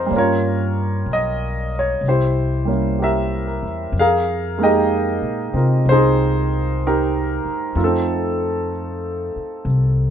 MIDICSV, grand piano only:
0, 0, Header, 1, 2, 480
1, 0, Start_track
1, 0, Tempo, 955414
1, 54, Time_signature, 4, 2, 24, 8
1, 5076, End_track
2, 0, Start_track
2, 0, Title_t, "Grand piano"
2, 0, Program_c, 0, 0
2, 0, Control_c, 0, 64, 127
2, 0, Note_on_c, 0, 60, 36
2, 0, Note_on_c, 0, 63, 33
2, 0, Note_on_c, 0, 65, 39
2, 0, Note_on_c, 0, 67, 61
2, 0, Note_on_c, 0, 70, 70
2, 0, Note_on_c, 0, 72, 67
2, 0, Note_on_c, 0, 75, 84
2, 32, Note_on_c, 0, 55, 49
2, 47, Note_on_c, 0, 58, 40
2, 55, Note_off_c, 0, 63, 0
2, 59, Note_off_c, 0, 65, 0
2, 59, Note_off_c, 0, 72, 0
2, 59, Control_c, 0, 64, 0
2, 60, Note_off_c, 0, 70, 0
2, 63, Note_off_c, 0, 60, 0
2, 63, Note_off_c, 0, 75, 0
2, 64, Note_off_c, 0, 67, 0
2, 65, Note_on_c, 0, 61, 44
2, 81, Note_on_c, 0, 65, 48
2, 83, Note_on_c, 0, 70, 51
2, 92, Note_on_c, 0, 73, 75
2, 149, Control_c, 0, 64, 127
2, 533, Note_off_c, 0, 73, 0
2, 568, Note_on_c, 0, 75, 75
2, 859, Note_off_c, 0, 75, 0
2, 899, Note_on_c, 0, 73, 63
2, 1004, Note_off_c, 0, 55, 0
2, 1010, Note_off_c, 0, 70, 0
2, 1012, Note_off_c, 0, 58, 0
2, 1021, Note_off_c, 0, 61, 0
2, 1022, Control_c, 0, 64, 0
2, 1029, Note_off_c, 0, 65, 0
2, 1038, Note_off_c, 0, 73, 0
2, 1046, Note_on_c, 0, 67, 43
2, 1048, Note_on_c, 0, 64, 44
2, 1049, Note_on_c, 0, 72, 62
2, 1095, Control_c, 0, 64, 127
2, 1332, Note_on_c, 0, 55, 37
2, 1341, Note_on_c, 0, 58, 35
2, 1350, Note_on_c, 0, 61, 34
2, 1352, Note_off_c, 0, 64, 0
2, 1360, Note_on_c, 0, 64, 39
2, 1495, Note_off_c, 0, 67, 0
2, 1503, Note_on_c, 0, 67, 33
2, 1511, Note_off_c, 0, 67, 0
2, 1518, Note_on_c, 0, 67, 46
2, 1519, Note_on_c, 0, 70, 48
2, 1526, Note_on_c, 0, 76, 66
2, 1738, Note_off_c, 0, 70, 0
2, 1745, Note_on_c, 0, 70, 37
2, 1826, Note_off_c, 0, 72, 0
2, 1972, Note_off_c, 0, 67, 0
2, 1976, Note_off_c, 0, 55, 0
2, 1976, Note_off_c, 0, 76, 0
2, 1981, Note_off_c, 0, 58, 0
2, 1985, Note_off_c, 0, 61, 0
2, 1990, Note_off_c, 0, 64, 0
2, 1990, Control_c, 0, 64, 0
2, 2005, Note_off_c, 0, 70, 0
2, 2007, Note_on_c, 0, 77, 77
2, 2011, Note_on_c, 0, 68, 59
2, 2013, Note_on_c, 0, 70, 56
2, 2080, Control_c, 0, 64, 127
2, 2301, Note_on_c, 0, 56, 48
2, 2302, Note_off_c, 0, 77, 0
2, 2309, Note_on_c, 0, 58, 42
2, 2317, Note_on_c, 0, 63, 44
2, 2327, Note_on_c, 0, 79, 53
2, 2329, Note_on_c, 0, 75, 67
2, 2330, Note_off_c, 0, 68, 0
2, 2337, Note_on_c, 0, 68, 44
2, 2338, Note_on_c, 0, 67, 47
2, 2781, Note_off_c, 0, 75, 0
2, 2781, Note_on_c, 0, 60, 36
2, 2789, Note_off_c, 0, 70, 0
2, 2790, Note_on_c, 0, 65, 31
2, 2796, Note_on_c, 0, 70, 41
2, 2959, Note_on_c, 0, 72, 81
2, 2965, Note_off_c, 0, 63, 0
2, 2965, Note_off_c, 0, 68, 0
2, 2972, Note_on_c, 0, 63, 60
2, 2973, Note_on_c, 0, 68, 59
2, 3264, Note_off_c, 0, 67, 0
2, 3442, Note_off_c, 0, 63, 0
2, 3443, Note_off_c, 0, 70, 0
2, 3444, Note_off_c, 0, 72, 0
2, 3450, Note_on_c, 0, 63, 53
2, 3451, Note_on_c, 0, 67, 52
2, 3451, Note_on_c, 0, 70, 72
2, 3894, Note_off_c, 0, 63, 0
2, 3894, Note_off_c, 0, 65, 0
2, 3894, Note_off_c, 0, 67, 0
2, 3894, Note_off_c, 0, 68, 0
2, 3896, Note_off_c, 0, 56, 0
2, 3899, Note_off_c, 0, 60, 0
2, 3900, Note_off_c, 0, 58, 0
2, 3900, Note_on_c, 0, 57, 42
2, 3902, Note_on_c, 0, 65, 38
2, 3905, Control_c, 0, 64, 0
2, 3905, Note_on_c, 0, 63, 40
2, 3905, Note_on_c, 0, 69, 49
2, 3908, Note_off_c, 0, 79, 0
2, 3928, Note_off_c, 0, 70, 0
2, 3931, Note_off_c, 0, 69, 0
2, 3932, Note_off_c, 0, 63, 0
2, 3939, Note_on_c, 0, 69, 65
2, 3940, Note_on_c, 0, 63, 48
2, 3944, Note_on_c, 0, 60, 46
2, 3984, Control_c, 0, 64, 127
2, 4376, Note_off_c, 0, 69, 0
2, 4852, Note_off_c, 0, 63, 0
2, 4854, Note_off_c, 0, 60, 0
2, 5076, Note_off_c, 0, 57, 0
2, 5076, Note_off_c, 0, 65, 0
2, 5076, End_track
0, 0, End_of_file